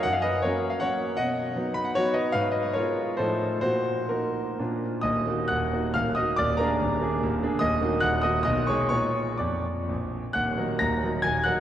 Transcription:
X:1
M:3/4
L:1/16
Q:1/4=137
K:Ebm
V:1 name="Grand piano"
g f [ce]2 [Bd]3 f [dg]4 | [^d^f]6 =b f [^F_d]2 [=B^d]2 | [cf]2 [ce]2 [Bd]4 [=A=c]4 | [G=c]4 [GB]4 z4 |
[ee']4 [gg']4 [ff']2 [ee']2 | [=d=d']2 [Bb]8 z2 | [ee']4 [gg']2 [ee']2 [ee']2 [dd']2 | [dd']4 [=d=d']4 z4 |
[gg']4 [bb']4 [aa']2 [gg']2 |]
V:2 name="Grand piano"
G,,4 [G,B,D]4 [G,B,D]4 | =B,,4 [^F,=B,^D]4 [F,B,D]4 | A,,4 [A,CF]4 [=A,,F,EF]4 | B,,4 [B,E]4 [B,,B,=DF]4 |
[E,,,E,,]2 [B,EG]2 [E,,,E,,]2 [B,EG]2 [E,,,E,,]2 [B,EG]2 | [E,,,E,,]2 [B,=DA]2 [E,,,E,,]2 [B,DA]2 [E,,,E,,]2 [B,DA]2 | [E,,,E,,]2 [B,EG]2 [E,,,E,,]2 [B,EG]2 [C,,C,]2 [A,EA]2 | [B,,FB]4 F,,4 B,,,4 |
[E,,,E,,]2 [G,EB]2 [E,,,E,,]2 [G,EB]2 [E,,,E,,]2 [G,EB]2 |]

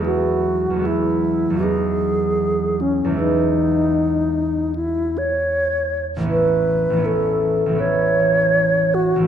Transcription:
X:1
M:4/4
L:1/8
Q:1/4=78
K:E
V:1 name="Alto flute"
F2 E2 G3 C | D4 E c2 z | B2 A2 c3 F |]
V:2 name="Harp" clef=bass
[E,,F,G,B,E]2 [E,,F,G,B,E]2 [E,,F,G,B,D]4 | [E,,E,G,B,E]8 | [A,,,E,B,CE]2 [A,,,E,B,CE]2 [A,,,E,B,CE]4 |]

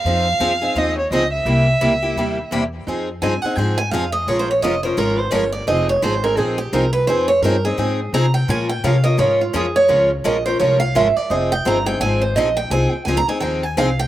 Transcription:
X:1
M:4/4
L:1/16
Q:"Swing" 1/4=170
K:Fm
V:1 name="Steel-string acoustic guitar"
z16 | z16 | z4 a2 _g2 =g2 a2 f2 e2 | (3d2 c2 d2 e2 c2 B2 c2 d2 =d2 |
e2 d2 c2 B2 A2 G2 B2 =B2 | c2 d2 B2 A6 b2 g2 | a2 g2 f2 e2 d2 F2 A2 d2- | d2 z2 e2 c2 d2 f2 =e2 =d2 |
e2 g2 b2 g2 a2 c2 e2 g2 | a2 g2 (3a2 b2 a2 g2 a2 f2 g2 |]
V:2 name="Violin"
f8 e2 d2 e2 =e2- | =e12 z4 | z16 | z16 |
z16 | z16 | z16 | z16 |
z16 | z16 |]
V:3 name="Steel-string acoustic guitar"
[F,CEA]2 z2 [F,CEA] z [CEA]2 [F,CEA]2 z2 [F,CEA] z3 | [C,G,B,=EG]2 z2 [C,G,B,EG] z [B,EG]2 [C,G,B,EG]2 z2 [C,G,B,EG] z3 | [F,CEA]2 z2 [F,CEA] z [CEA]2 [F,CEA]2 z2 [F,CEA] z3 | [F,A,DFB]2 z2 [F,A,DFB] z [DFB]2 [F,A,DFB]2 z2 [F,A,DFB] z3 |
[F,CEA]2 z2 [F,CEA] z [CEA]2 [F,CEA]2 z2 [F,CEA] z3 | [F,CEA]2 z2 [F,CEA] z [CEA]2 [F,CEA]2 z2 [F,CEA] z3 | [F,A,DFB]2 z2 [F,A,DFB] z [DFB]2 [F,A,DFB]2 z2 [F,A,DFB] z3 | [F,A,DFB]2 z2 [F,A,DFB] z [DFB]2 [F,A,DFB]2 z2 [F,A,DFB] z3 |
[F,CEA]2 z2 [F,CEA] z [CEA]2 [F,CEA]2 z2 [F,CEA] z3 | [F,CEA]2 z2 [F,CEA] z [CEA]2 [F,CEA]2 z2 [F,CEA] z3 |]
V:4 name="Steel-string acoustic guitar"
[F,CEA]2 z2 [F,CEA] z3 [F,CEA]2 z2 [F,CEA] z3 | [C,G,B,=EG]2 z2 [C,G,B,EG] z3 [C,G,B,EG]2 z2 [C,G,B,EG] z3 | [F,CEA]2 z2 [F,CEA] z3 [F,CEA]2 z2 [F,CEA] z3 | [F,A,DFB]2 z2 [F,A,DFB] z3 [F,A,DFB]2 z2 [F,A,DFB] z3 |
[F,CEA]2 z2 [F,CEA] z3 [F,CEA]2 z2 [F,CEA] z3 | [F,CEA]2 z2 [F,CEA] z3 [F,CEA]2 z2 [F,CEA] z3 | [F,A,DFB]2 z2 [F,A,DFB] z3 [F,A,DFB]2 z2 [F,A,DFB] z3 | [F,A,DFB]2 z2 [F,A,DFB] z3 [F,A,DFB]2 z2 [F,A,DFB] z3 |
[F,CEA]2 z2 [F,CEA] z3 [F,CEA]2 z2 [F,CEA] z3 | [F,CEA]2 z2 [F,CEA] z3 [F,CEA]2 z2 [F,CEA] z3 |]
V:5 name="Upright bass" clef=bass
F,,4 F,,4 E,,4 D,,4 | C,,4 D,,4 ^D,,4 =E,,4 | F,,4 G,,2 z2 A,,4 F,,4 | B,,,4 F,,,4 A,,,4 G,,,4 |
F,,,4 A,,,4 B,,,4 C,,4 | F,,4 G,,4 A,,4 C,4 | B,,4 C,4 A,,4 F,,4 | D,,4 B,,,4 C,,4 A,,,2 z2 |
F,,,4 G,,,4 A,,,4 B,,,4 | C,,2 z2 D,,2 z2 E,,4 C,,4 |]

